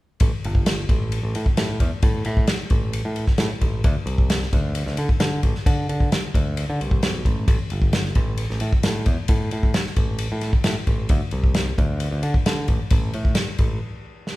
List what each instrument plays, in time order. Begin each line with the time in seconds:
0.20 picked electric bass A1, kick, ride
0.44 picked electric bass G1, ride
0.55 kick
0.66 snare, ride
0.89 picked electric bass A1, kick, ride
1.12 ride
1.23 picked electric bass A1
1.35 picked electric bass A2, ride
1.46 kick
1.57 picked electric bass A2, snare, ride
1.80 picked electric bass E2, kick, ride
2.02 picked electric bass A2, kick, ride
2.25 picked electric bass A2, ride
2.37 kick
2.47 snare, ride
2.70 picked electric bass A1, kick, ride
2.93 ride
3.05 picked electric bass A2
3.16 ride
3.27 kick, snare
3.38 picked electric bass A2, snare, ride
3.61 picked electric bass A1, kick, ride
3.84 picked electric bass D2, kick, ride
4.06 picked electric bass C2, ride
4.18 kick
4.30 snare, ride
4.42 snare
4.53 picked electric bass D2, kick, ride
4.75 ride
4.86 picked electric bass D2, snare
4.97 picked electric bass D3, ride
5.09 kick
5.20 picked electric bass D3, snare, ride
5.43 picked electric bass A1, kick, ride
5.55 snare
5.66 picked electric bass D3, kick, ride
5.89 picked electric bass D3, ride
6.00 kick
6.12 snare, ride
6.34 picked electric bass D2, kick, ride
6.57 ride
6.70 picked electric bass D3
6.81 picked electric bass C2, ride
6.91 kick
7.03 picked electric bass B1, snare, ride
7.25 picked electric bass A1, kick, ride
7.48 picked electric bass A1, kick, ride
7.70 picked electric bass G1, ride
7.82 kick
7.93 snare, ride
8.05 snare
8.15 picked electric bass A1, kick, ride
8.38 ride
8.50 picked electric bass A1, snare
8.60 picked electric bass A2, ride
8.73 kick
8.83 picked electric bass A2, snare, ride
9.06 picked electric bass E2, kick, ride
9.28 picked electric bass A2, kick, ride
9.51 picked electric bass A2, ride
9.63 kick
9.74 snare, ride
9.86 snare
9.96 picked electric bass A1, kick, ride
10.18 ride
10.32 picked electric bass A2
10.41 snare, ride
10.53 kick
10.64 picked electric bass A2, snare, ride
10.87 picked electric bass A1, kick, ride
11.09 picked electric bass D2, kick, ride
11.31 picked electric bass C2, ride
11.44 kick
11.54 snare, ride
11.78 picked electric bass D2, kick, ride
12.00 ride
12.11 picked electric bass D2
12.23 picked electric bass D3, ride
12.34 kick
12.46 picked electric bass D3, snare, ride
12.68 picked electric bass A1, kick, ride
12.90 picked electric bass A1, kick, ride
13.13 picked electric bass A2, ride
13.25 kick
13.35 snare, ride
13.58 picked electric bass A1, kick, ride
14.27 snare